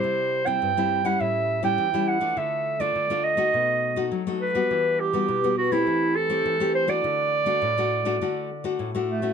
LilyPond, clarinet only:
\new Staff \with { instrumentName = "Clarinet" } { \time 4/4 \key d \mixolydian \tempo 4 = 103 c''8. g''4 fis''16 e''8. g''8. fis''8 | e''8. d''8. ees''4. r8 b'8~ | b'8 g'4 fis'16 e'8. a'4 c''16 d''16~ | d''2. r8 a8 | }